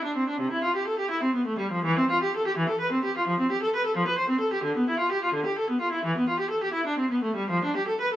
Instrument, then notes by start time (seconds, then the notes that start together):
viola
0.04 D4
0.17 C4
0.29 D4
0.40 C3
0.52 E4
0.63 F4
0.76 G4
0.87 A4
0.99 G4
1.11 E4
1.23 C4
1.35 B3
1.47 A3
1.59 G3
1.72 F3
1.85 E3
1.98 C4
2.10 F4
2.23 G4
2.36 A4
2.47 G4
2.57 E3
2.69 A4
2.80 B4
2.92 C4
3.04 G4
3.17 F4
3.27 F3
3.40 C4
3.51 G4
3.62 A4
3.75 B4
3.86 A4
3.97 F3
4.07 B4
4.18 C5
4.29 C4
4.40 A4
4.53 G4
4.64 D3
4.77 B3
4.89 E4
4.99 F4
5.12 G4
5.24 F4
5.34 D3
5.46 G4
5.58 A4
5.70 B3
5.81 F4
5.92 E4
6.05 E3
6.17 B3
6.29 F4
6.40 G4
6.50 A4
6.63 G4
6.74 E4
6.87 D4
6.99 C4
7.11 B3
7.24 A3
7.36 G3
7.50 F3
7.64 D4
7.76 G4
7.88 A4
8.01 B4